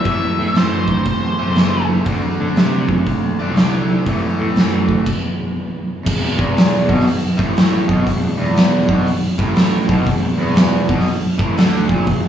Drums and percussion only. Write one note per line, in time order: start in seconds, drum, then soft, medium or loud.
0.05 kick loud
0.05 open hi-hat soft
0.55 snare loud
0.55 open hi-hat medium
0.88 kick medium
1.06 kick loud
1.06 open hi-hat soft
1.56 snare loud
1.56 open hi-hat medium
2.06 kick loud
2.06 open hi-hat soft
2.56 snare loud
2.56 open hi-hat soft
2.89 kick medium
3.07 kick medium
3.07 open hi-hat soft
3.56 snare loud
3.56 open hi-hat medium
4.06 kick loud
4.06 open hi-hat soft
4.56 snare loud
4.56 open hi-hat medium
4.89 kick medium
5.06 kick medium
5.06 crash medium
6.06 kick medium
6.06 crash loud
6.39 kick medium
6.57 snare loud
6.57 open hi-hat medium
6.89 kick medium
7.00 snare soft
7.07 open hi-hat medium
7.39 kick loud
7.39 snare soft
7.57 snare loud
7.57 open hi-hat medium
7.89 kick loud
8.07 kick medium
8.07 open hi-hat medium
8.56 snare loud
8.56 open hi-hat medium
8.89 kick loud
9.07 open hi-hat medium
9.39 kick loud
9.39 snare soft
9.56 snare loud
9.56 open hi-hat medium
9.89 kick medium
10.06 kick medium
10.06 open hi-hat medium
10.56 snare loud
10.56 open hi-hat medium
10.89 kick medium
11.00 snare soft
11.08 open hi-hat medium
11.39 kick loud
11.58 snare loud
11.58 open hi-hat medium
11.89 kick loud
12.07 kick medium
12.07 open hi-hat medium